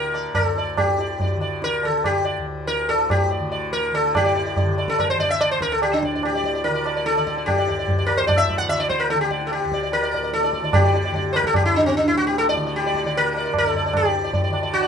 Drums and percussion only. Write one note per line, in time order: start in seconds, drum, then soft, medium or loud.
0.14 tabla na medium
0.35 tabla na medium
0.35 tabla ge medium
0.56 tabla te medium
0.77 tabla na loud
0.77 tabla ge loud
0.99 tabla te medium
1.20 tabla tin medium
1.20 tabla ge medium
1.41 tabla na medium
1.62 tabla te medium
1.83 tabla na medium
2.04 tabla na medium
2.04 tabla ge medium
2.68 tabla te medium
2.90 tabla na medium
3.10 tabla na medium
3.10 tabla ge medium
3.73 tabla te medium
3.94 tabla na medium
4.15 tabla na loud
4.15 tabla ge loud
4.36 tabla te medium
4.57 tabla tin medium
4.57 tabla ge medium
4.78 tabla na medium
4.88 tabla ke medium
4.99 tabla na medium
4.99 tabla ge medium
5.20 tabla ge medium
5.41 tabla na medium
5.61 tabla ke medium
5.82 tabla na medium
6.03 tabla ke medium
6.23 tabla na medium
6.44 tabla ke medium
6.64 tabla tin medium
6.85 tabla na medium
7.06 tabla te medium
7.17 tabla te medium
7.27 tabla ke medium
7.37 tabla te medium
7.48 tabla na loud
7.48 tabla ge loud
7.68 tabla te medium
7.88 tabla tin medium
7.88 tabla ge medium
8.08 tabla na medium
8.29 tabla na medium
8.29 tabla ge medium
8.50 tabla ge medium
8.70 tabla na medium
8.90 tabla ke medium
9.10 tabla te loud
9.21 tabla te medium
9.31 tabla ke medium
9.41 tabla te medium
9.52 tabla na medium
9.72 tabla ke medium
9.92 tabla tin medium
10.13 tabla na medium
10.33 tabla te medium
10.43 tabla te medium
10.53 tabla ke medium
10.64 tabla te medium
10.73 tabla na loud
10.73 tabla ge loud
10.94 tabla te medium
11.14 tabla tin medium
11.14 tabla ge medium
11.34 tabla na medium
11.44 tabla ke medium
11.54 tabla na medium
11.54 tabla ge medium
11.74 tabla te medium
11.84 tabla ge medium
11.94 tabla te medium
12.04 tabla te medium
12.14 tabla ke medium
12.24 tabla te medium
12.34 tabla te medium
12.44 tabla te medium
12.54 tabla ke medium
12.64 tabla te medium
12.73 tabla te medium
12.84 tabla te medium
12.94 tabla ke medium
13.04 tabla te medium
13.14 tabla tin medium
13.34 tabla na medium
13.54 tabla na medium
13.54 tabla ge medium
13.74 tabla ge medium
13.93 tabla na loud
13.93 tabla ge loud
14.14 tabla te medium
14.33 tabla tin medium
14.33 tabla ge medium
14.54 tabla na medium
14.73 tabla na medium